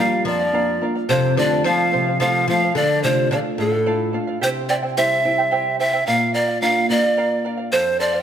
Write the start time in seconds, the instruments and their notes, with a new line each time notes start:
Already playing: oud G3, nylon-string guitar A#3 D4, pan flute F5
0.00 nylon-string guitar F4, charango A#4 D5 F5
0.25 nylon-string guitar F2, oud F3, charango A#4 D5 F5, pan flute D5
0.40 charango D5 F5
0.52 nylon-string guitar A#3 D4 F4, charango A#4 D5 F5
0.81 nylon-string guitar A#3 D4 F4, charango A#4 D5 F5
0.95 charango D5 F5
1.09 nylon-string guitar F2, oud C3, charango A4 C5 F5, pan flute C5
1.36 oud D3, nylon-string guitar A3 C4 F4, charango A4 C5 F5, pan flute D5
1.51 charango C5 F5
1.64 oud F3, nylon-string guitar A3 C4, charango A4 C5 F5, pan flute F5
1.92 nylon-string guitar C3, charango A4 C5 F5
2.06 charango C5 F5
2.20 oud F3, nylon-string guitar A3 C4 F4, charango A4 C5 F5, pan flute F5
2.48 oud F3, nylon-string guitar A3 C4 F4, charango A4 C5 F5, pan flute F5
2.62 charango C5 F5
2.75 oud D3, nylon-string guitar D3, charango A4 D5 F5, pan flute D5
3.03 oud C3, nylon-string guitar A3 D4 F4, charango A4 D5 F5, pan flute C5
3.18 charango D5 F5
3.31 oud D3, nylon-string guitar A3 D4, charango A4 D5 F5, pan flute D5
3.58 oud A2, nylon-string guitar A2, charango A4 D5 F5, pan flute A4
3.72 charango D5 F5
3.86 nylon-string guitar A3 D4 F4, charango A4 D5 F5
4.13 nylon-string guitar A3 D4 F4, charango A4 D5 F5
4.27 charango D5 F5
4.41 nylon-string guitar C3, charango E4 G4 C5 E5 G5, pan flute C5
4.69 charango E4 C5 E5 G5, pan flute D5
4.83 charango E4 C5 G5
4.97 nylon-string guitar G3 C4 E4, charango E4 G4 C5 E5 G5, pan flute E5
5.24 nylon-string guitar G3 C4 E4, charango E4 C5 E5 G5
5.38 charango E4 C5 G5
5.51 charango E4 G4 C5 E5 G5
5.79 charango E4 C5 E5 G5, pan flute E5
5.93 charango E4 C5 G5
6.07 nylon-string guitar A#2, charango A#4 D5 F5, pan flute F5
6.34 charango A#4 D5 F5, pan flute D5
6.48 charango D5 F5
6.61 nylon-string guitar A#3 D4 F4, charango A#4 D5 F5, pan flute F5
6.89 nylon-string guitar A#3 D4 F4, charango A#4 D5 F5, pan flute D5
7.03 charango D5 F5
7.17 charango A#4 D5 F5
7.44 charango A#4 D5 F5
7.57 charango D5 F5
7.72 nylon-string guitar F2, charango A4 C5 F5, pan flute C5
8.00 charango A4 C5 F5, pan flute D5
8.13 charango C5 F5